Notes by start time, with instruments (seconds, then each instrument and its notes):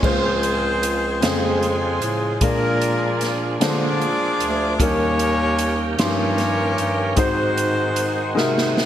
0.02 bass clarinet C#2, tonewheel organ C#3 F3 G#4 C5, grand piano C#3 G#3 C#4 F4 C5, horn section C4 F4 G#4 C5, kick, crash
0.43 closed hi-hat
0.83 closed hi-hat
1.21 bass clarinet F2, grand piano C#3 G#3 F4 C5, horn section G#3 C4 G#4, snare, closed hi-hat
1.25 horn section F4
1.63 closed hi-hat
2.01 bass clarinet A2, closed hi-hat
2.40 bass clarinet A#2, grand piano A#2 G#3 D4 F4 A#4, tonewheel organ F3 A#3 D4 G#4, horn section A#3 D4 F4 A#4, kick, closed hi-hat
2.82 closed hi-hat
3.21 snare, closed hi-hat
3.60 bass clarinet D3, grand piano G#3 D4 F4 C5, horn section D4 F4 G#4 D5, snare, closed hi-hat
4.01 closed hi-hat
4.39 bass clarinet D2, closed hi-hat
4.78 bass clarinet D#2, tonewheel organ D#3 A#3 C#4 F4, grand piano D#3 G3 C#4 D#4 A#4, horn section C#4 C#5, kick, closed hi-hat
4.83 horn section G4 A#4, tonewheel organ G4
5.19 closed hi-hat
5.59 closed hi-hat
5.98 bass clarinet G2, grand piano F3 C#4 D#4 C6, horn section C#4 G4 C#5, snare, closed hi-hat
6.02 grand piano G3, horn section A#4
6.38 snare, closed hi-hat
6.78 bass clarinet G2, closed hi-hat
7.16 bass clarinet G#2, grand piano G#2 G#3 D#4 F#4 C5, tonewheel organ D#3 G#3 C4 F#4, horn section C4 C5, kick, closed hi-hat
7.20 horn section D#4 F#4
7.58 closed hi-hat
7.96 closed hi-hat
8.35 bass clarinet C3, grand piano G#3 D#4 F#4 A#4, snare
8.58 snare
8.77 snare